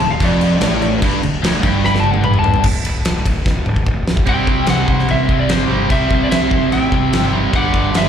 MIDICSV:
0, 0, Header, 1, 7, 480
1, 0, Start_track
1, 0, Tempo, 407056
1, 1210, Time_signature, 4, 2, 24, 8
1, 9539, End_track
2, 0, Start_track
2, 0, Title_t, "Lead electric guitar"
2, 0, Program_c, 0, 29
2, 125, Note_on_c, 0, 77, 90
2, 287, Note_off_c, 0, 77, 0
2, 287, Note_on_c, 0, 74, 111
2, 1200, Note_off_c, 0, 74, 0
2, 2190, Note_on_c, 0, 83, 111
2, 2335, Note_off_c, 0, 83, 0
2, 2355, Note_on_c, 0, 81, 92
2, 2489, Note_off_c, 0, 81, 0
2, 2489, Note_on_c, 0, 78, 107
2, 2644, Note_off_c, 0, 78, 0
2, 2646, Note_on_c, 0, 83, 100
2, 2803, Note_off_c, 0, 83, 0
2, 2816, Note_on_c, 0, 81, 107
2, 3123, Note_off_c, 0, 81, 0
2, 5057, Note_on_c, 0, 79, 94
2, 5535, Note_off_c, 0, 79, 0
2, 5540, Note_on_c, 0, 78, 90
2, 6021, Note_on_c, 0, 76, 91
2, 6027, Note_off_c, 0, 78, 0
2, 6357, Note_off_c, 0, 76, 0
2, 6362, Note_on_c, 0, 74, 82
2, 6488, Note_off_c, 0, 74, 0
2, 6492, Note_on_c, 0, 72, 83
2, 6976, Note_on_c, 0, 76, 89
2, 6984, Note_off_c, 0, 72, 0
2, 7342, Note_off_c, 0, 76, 0
2, 7355, Note_on_c, 0, 74, 81
2, 7432, Note_off_c, 0, 74, 0
2, 7437, Note_on_c, 0, 76, 96
2, 7887, Note_off_c, 0, 76, 0
2, 7935, Note_on_c, 0, 79, 96
2, 8603, Note_off_c, 0, 79, 0
2, 8914, Note_on_c, 0, 78, 93
2, 9394, Note_off_c, 0, 78, 0
2, 9402, Note_on_c, 0, 76, 96
2, 9539, Note_off_c, 0, 76, 0
2, 9539, End_track
3, 0, Start_track
3, 0, Title_t, "Lead electric guitar"
3, 0, Program_c, 1, 29
3, 5084, Note_on_c, 1, 76, 79
3, 5509, Note_on_c, 1, 72, 70
3, 5513, Note_off_c, 1, 76, 0
3, 5963, Note_off_c, 1, 72, 0
3, 6023, Note_on_c, 1, 72, 78
3, 6350, Note_off_c, 1, 72, 0
3, 6377, Note_on_c, 1, 71, 72
3, 6469, Note_on_c, 1, 67, 70
3, 6483, Note_off_c, 1, 71, 0
3, 6924, Note_off_c, 1, 67, 0
3, 6976, Note_on_c, 1, 72, 79
3, 7306, Note_off_c, 1, 72, 0
3, 7364, Note_on_c, 1, 71, 70
3, 7458, Note_off_c, 1, 71, 0
3, 7483, Note_on_c, 1, 72, 74
3, 7912, Note_off_c, 1, 72, 0
3, 7928, Note_on_c, 1, 76, 86
3, 8600, Note_off_c, 1, 76, 0
3, 8922, Note_on_c, 1, 74, 85
3, 9352, Note_off_c, 1, 74, 0
3, 9410, Note_on_c, 1, 71, 77
3, 9539, Note_off_c, 1, 71, 0
3, 9539, End_track
4, 0, Start_track
4, 0, Title_t, "Overdriven electric guitar"
4, 0, Program_c, 2, 29
4, 6710, Note_on_c, 2, 60, 89
4, 6729, Note_on_c, 2, 55, 87
4, 6748, Note_on_c, 2, 48, 73
4, 6932, Note_off_c, 2, 48, 0
4, 6944, Note_off_c, 2, 60, 0
4, 6961, Note_off_c, 2, 55, 0
4, 8646, Note_on_c, 2, 60, 92
4, 8669, Note_on_c, 2, 55, 85
4, 8687, Note_on_c, 2, 48, 73
4, 8872, Note_off_c, 2, 48, 0
4, 8872, Note_off_c, 2, 60, 0
4, 8896, Note_off_c, 2, 55, 0
4, 9539, End_track
5, 0, Start_track
5, 0, Title_t, "Distorted electric guitar"
5, 0, Program_c, 3, 30
5, 21, Note_on_c, 3, 38, 72
5, 207, Note_off_c, 3, 38, 0
5, 257, Note_on_c, 3, 41, 111
5, 726, Note_off_c, 3, 41, 0
5, 730, Note_on_c, 3, 45, 109
5, 1199, Note_off_c, 3, 45, 0
5, 1204, Note_on_c, 3, 43, 110
5, 1440, Note_off_c, 3, 43, 0
5, 1454, Note_on_c, 3, 38, 74
5, 1644, Note_off_c, 3, 38, 0
5, 1675, Note_on_c, 3, 38, 102
5, 1925, Note_off_c, 3, 38, 0
5, 1925, Note_on_c, 3, 43, 101
5, 3119, Note_off_c, 3, 43, 0
5, 5036, Note_on_c, 3, 48, 78
5, 5051, Note_on_c, 3, 55, 85
5, 5061, Note_on_c, 3, 60, 84
5, 6226, Note_off_c, 3, 48, 0
5, 6229, Note_off_c, 3, 60, 0
5, 6243, Note_on_c, 3, 60, 82
5, 6249, Note_off_c, 3, 55, 0
5, 6254, Note_on_c, 3, 55, 77
5, 6272, Note_on_c, 3, 48, 72
5, 6460, Note_off_c, 3, 48, 0
5, 6470, Note_off_c, 3, 60, 0
5, 6475, Note_on_c, 3, 48, 83
5, 6480, Note_off_c, 3, 55, 0
5, 6485, Note_on_c, 3, 55, 81
5, 6496, Note_on_c, 3, 60, 82
5, 6946, Note_off_c, 3, 48, 0
5, 6957, Note_off_c, 3, 60, 0
5, 6958, Note_on_c, 3, 48, 80
5, 6966, Note_off_c, 3, 55, 0
5, 6971, Note_on_c, 3, 55, 86
5, 6984, Note_on_c, 3, 60, 101
5, 8148, Note_off_c, 3, 48, 0
5, 8152, Note_off_c, 3, 60, 0
5, 8167, Note_on_c, 3, 60, 87
5, 8175, Note_off_c, 3, 55, 0
5, 8180, Note_on_c, 3, 55, 76
5, 8197, Note_on_c, 3, 48, 78
5, 8392, Note_off_c, 3, 60, 0
5, 8400, Note_off_c, 3, 48, 0
5, 8415, Note_on_c, 3, 48, 84
5, 8420, Note_off_c, 3, 55, 0
5, 8425, Note_on_c, 3, 55, 83
5, 8434, Note_on_c, 3, 60, 91
5, 8876, Note_off_c, 3, 48, 0
5, 8886, Note_off_c, 3, 60, 0
5, 8896, Note_on_c, 3, 43, 90
5, 8908, Note_off_c, 3, 55, 0
5, 8913, Note_on_c, 3, 50, 88
5, 8917, Note_on_c, 3, 55, 97
5, 9539, Note_off_c, 3, 43, 0
5, 9539, Note_off_c, 3, 50, 0
5, 9539, Note_off_c, 3, 55, 0
5, 9539, End_track
6, 0, Start_track
6, 0, Title_t, "Fingered electric bass"
6, 0, Program_c, 4, 33
6, 21, Note_on_c, 4, 26, 78
6, 232, Note_off_c, 4, 26, 0
6, 239, Note_on_c, 4, 29, 96
6, 691, Note_off_c, 4, 29, 0
6, 721, Note_on_c, 4, 33, 96
6, 1172, Note_off_c, 4, 33, 0
6, 1212, Note_on_c, 4, 31, 100
6, 1434, Note_off_c, 4, 31, 0
6, 1444, Note_on_c, 4, 26, 80
6, 1670, Note_off_c, 4, 26, 0
6, 1688, Note_on_c, 4, 26, 93
6, 1912, Note_off_c, 4, 26, 0
6, 1926, Note_on_c, 4, 31, 97
6, 3080, Note_off_c, 4, 31, 0
6, 3114, Note_on_c, 4, 26, 90
6, 3315, Note_off_c, 4, 26, 0
6, 3363, Note_on_c, 4, 26, 83
6, 3560, Note_off_c, 4, 26, 0
6, 3610, Note_on_c, 4, 26, 91
6, 3804, Note_off_c, 4, 26, 0
6, 3838, Note_on_c, 4, 26, 97
6, 4037, Note_off_c, 4, 26, 0
6, 4082, Note_on_c, 4, 26, 92
6, 4279, Note_off_c, 4, 26, 0
6, 4335, Note_on_c, 4, 26, 89
6, 4526, Note_off_c, 4, 26, 0
6, 4560, Note_on_c, 4, 26, 92
6, 4758, Note_off_c, 4, 26, 0
6, 4814, Note_on_c, 4, 26, 93
6, 5006, Note_off_c, 4, 26, 0
6, 5036, Note_on_c, 4, 36, 95
6, 5237, Note_off_c, 4, 36, 0
6, 5274, Note_on_c, 4, 36, 82
6, 5476, Note_off_c, 4, 36, 0
6, 5519, Note_on_c, 4, 36, 85
6, 5719, Note_off_c, 4, 36, 0
6, 5754, Note_on_c, 4, 36, 87
6, 5956, Note_off_c, 4, 36, 0
6, 5992, Note_on_c, 4, 33, 90
6, 6195, Note_off_c, 4, 33, 0
6, 6235, Note_on_c, 4, 36, 84
6, 6436, Note_off_c, 4, 36, 0
6, 6473, Note_on_c, 4, 31, 93
6, 6675, Note_off_c, 4, 31, 0
6, 6722, Note_on_c, 4, 31, 88
6, 6920, Note_off_c, 4, 31, 0
6, 6958, Note_on_c, 4, 36, 92
6, 7158, Note_off_c, 4, 36, 0
6, 7199, Note_on_c, 4, 36, 90
6, 7399, Note_off_c, 4, 36, 0
6, 7442, Note_on_c, 4, 36, 89
6, 7640, Note_off_c, 4, 36, 0
6, 7682, Note_on_c, 4, 36, 89
6, 7880, Note_off_c, 4, 36, 0
6, 7917, Note_on_c, 4, 33, 91
6, 8118, Note_off_c, 4, 33, 0
6, 8157, Note_on_c, 4, 36, 86
6, 8358, Note_off_c, 4, 36, 0
6, 8401, Note_on_c, 4, 31, 96
6, 8796, Note_off_c, 4, 31, 0
6, 8888, Note_on_c, 4, 31, 96
6, 9084, Note_off_c, 4, 31, 0
6, 9126, Note_on_c, 4, 31, 88
6, 9323, Note_off_c, 4, 31, 0
6, 9372, Note_on_c, 4, 31, 89
6, 9539, Note_off_c, 4, 31, 0
6, 9539, End_track
7, 0, Start_track
7, 0, Title_t, "Drums"
7, 2, Note_on_c, 9, 49, 59
7, 120, Note_off_c, 9, 49, 0
7, 237, Note_on_c, 9, 49, 69
7, 241, Note_on_c, 9, 36, 93
7, 355, Note_off_c, 9, 49, 0
7, 359, Note_off_c, 9, 36, 0
7, 485, Note_on_c, 9, 49, 58
7, 602, Note_off_c, 9, 49, 0
7, 718, Note_on_c, 9, 49, 79
7, 727, Note_on_c, 9, 38, 115
7, 836, Note_off_c, 9, 49, 0
7, 845, Note_off_c, 9, 38, 0
7, 966, Note_on_c, 9, 49, 57
7, 1084, Note_off_c, 9, 49, 0
7, 1204, Note_on_c, 9, 49, 82
7, 1205, Note_on_c, 9, 36, 116
7, 1322, Note_off_c, 9, 49, 0
7, 1323, Note_off_c, 9, 36, 0
7, 1452, Note_on_c, 9, 49, 62
7, 1570, Note_off_c, 9, 49, 0
7, 1697, Note_on_c, 9, 49, 85
7, 1706, Note_on_c, 9, 38, 120
7, 1814, Note_off_c, 9, 49, 0
7, 1824, Note_off_c, 9, 38, 0
7, 1926, Note_on_c, 9, 36, 108
7, 1935, Note_on_c, 9, 49, 61
7, 2044, Note_off_c, 9, 36, 0
7, 2053, Note_off_c, 9, 49, 0
7, 2174, Note_on_c, 9, 38, 56
7, 2292, Note_off_c, 9, 38, 0
7, 2296, Note_on_c, 9, 38, 60
7, 2403, Note_on_c, 9, 48, 71
7, 2414, Note_off_c, 9, 38, 0
7, 2520, Note_off_c, 9, 48, 0
7, 2520, Note_on_c, 9, 48, 68
7, 2638, Note_off_c, 9, 48, 0
7, 2638, Note_on_c, 9, 47, 92
7, 2756, Note_off_c, 9, 47, 0
7, 2756, Note_on_c, 9, 45, 88
7, 2874, Note_off_c, 9, 45, 0
7, 2878, Note_on_c, 9, 43, 95
7, 2991, Note_off_c, 9, 43, 0
7, 2991, Note_on_c, 9, 43, 97
7, 3108, Note_on_c, 9, 57, 119
7, 3109, Note_off_c, 9, 43, 0
7, 3115, Note_on_c, 9, 36, 117
7, 3226, Note_off_c, 9, 57, 0
7, 3233, Note_off_c, 9, 36, 0
7, 3357, Note_on_c, 9, 51, 76
7, 3475, Note_off_c, 9, 51, 0
7, 3594, Note_on_c, 9, 51, 106
7, 3603, Note_on_c, 9, 38, 115
7, 3712, Note_off_c, 9, 51, 0
7, 3721, Note_off_c, 9, 38, 0
7, 3837, Note_on_c, 9, 36, 87
7, 3841, Note_on_c, 9, 51, 80
7, 3955, Note_off_c, 9, 36, 0
7, 3959, Note_off_c, 9, 51, 0
7, 4078, Note_on_c, 9, 36, 107
7, 4089, Note_on_c, 9, 38, 62
7, 4196, Note_off_c, 9, 36, 0
7, 4206, Note_off_c, 9, 38, 0
7, 4315, Note_on_c, 9, 47, 80
7, 4432, Note_off_c, 9, 47, 0
7, 4437, Note_on_c, 9, 36, 74
7, 4555, Note_off_c, 9, 36, 0
7, 4557, Note_on_c, 9, 36, 94
7, 4675, Note_off_c, 9, 36, 0
7, 4805, Note_on_c, 9, 38, 100
7, 4917, Note_on_c, 9, 36, 102
7, 4923, Note_off_c, 9, 38, 0
7, 5028, Note_on_c, 9, 49, 63
7, 5035, Note_off_c, 9, 36, 0
7, 5035, Note_on_c, 9, 36, 114
7, 5145, Note_off_c, 9, 49, 0
7, 5153, Note_off_c, 9, 36, 0
7, 5274, Note_on_c, 9, 36, 89
7, 5392, Note_off_c, 9, 36, 0
7, 5500, Note_on_c, 9, 49, 68
7, 5509, Note_on_c, 9, 38, 110
7, 5618, Note_off_c, 9, 49, 0
7, 5627, Note_off_c, 9, 38, 0
7, 5753, Note_on_c, 9, 36, 92
7, 5871, Note_off_c, 9, 36, 0
7, 5887, Note_on_c, 9, 38, 31
7, 5994, Note_on_c, 9, 49, 58
7, 6005, Note_off_c, 9, 38, 0
7, 6112, Note_off_c, 9, 49, 0
7, 6237, Note_on_c, 9, 36, 88
7, 6355, Note_off_c, 9, 36, 0
7, 6473, Note_on_c, 9, 49, 62
7, 6483, Note_on_c, 9, 38, 108
7, 6591, Note_off_c, 9, 49, 0
7, 6601, Note_off_c, 9, 38, 0
7, 6959, Note_on_c, 9, 36, 115
7, 6959, Note_on_c, 9, 49, 61
7, 7077, Note_off_c, 9, 36, 0
7, 7077, Note_off_c, 9, 49, 0
7, 7199, Note_on_c, 9, 36, 84
7, 7317, Note_off_c, 9, 36, 0
7, 7445, Note_on_c, 9, 49, 61
7, 7454, Note_on_c, 9, 38, 115
7, 7563, Note_off_c, 9, 49, 0
7, 7572, Note_off_c, 9, 38, 0
7, 7680, Note_on_c, 9, 36, 84
7, 7798, Note_off_c, 9, 36, 0
7, 7926, Note_on_c, 9, 49, 53
7, 8044, Note_off_c, 9, 49, 0
7, 8161, Note_on_c, 9, 36, 90
7, 8279, Note_off_c, 9, 36, 0
7, 8405, Note_on_c, 9, 49, 56
7, 8415, Note_on_c, 9, 38, 107
7, 8523, Note_off_c, 9, 49, 0
7, 8532, Note_off_c, 9, 38, 0
7, 8537, Note_on_c, 9, 38, 34
7, 8655, Note_off_c, 9, 38, 0
7, 8885, Note_on_c, 9, 36, 117
7, 8885, Note_on_c, 9, 49, 60
7, 9003, Note_off_c, 9, 36, 0
7, 9003, Note_off_c, 9, 49, 0
7, 9125, Note_on_c, 9, 36, 88
7, 9243, Note_off_c, 9, 36, 0
7, 9367, Note_on_c, 9, 49, 67
7, 9376, Note_on_c, 9, 38, 121
7, 9485, Note_off_c, 9, 49, 0
7, 9494, Note_off_c, 9, 38, 0
7, 9539, End_track
0, 0, End_of_file